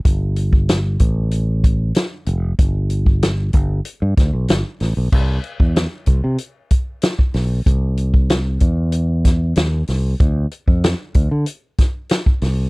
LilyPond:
<<
  \new Staff \with { instrumentName = "Fingered electric bass" } { \clef bass \time 4/4 \key c \major \tempo 4 = 95 g,,4. a,,4. r8 f,,8 | g,,4. g,,8 r16 g,16 d,16 b,,16 g,,16 r16 a,,16 b,,16 | c,8 r16 e,8 r16 c,16 c16 r4. b,,8 | c,4. e,4. ees,8 c,8 |
d,8 r16 f,8 r16 d,16 d16 r4. c,8 | }
  \new DrumStaff \with { instrumentName = "Drums" } \drummode { \time 4/4 <hh bd>8 hh16 bd16 <hh sn>8 <hh bd>8 hh8 <hh bd>8 <hh sn>8 hh8 | <hh bd>8 hh16 bd16 <hh sn>8 <hh bd>8 hh8 <hh bd sn>8 <hh sn>8 <hho sn>8 | <cymc bd>8 hh16 bd16 <hh sn>8 <hh bd>8 hh8 <hh bd>8 <hh sn>16 bd16 <hho sn>8 | <hh bd>8 hh16 bd16 <hh sn>8 <hh bd>8 hh8 <hh bd sn>8 <hh sn>8 <hho sn>8 |
<hh bd>8 hh16 bd16 <hh sn>8 <hh bd>8 hh8 <hh bd sn>8 <hh sn>16 bd16 <hho sn>8 | }
>>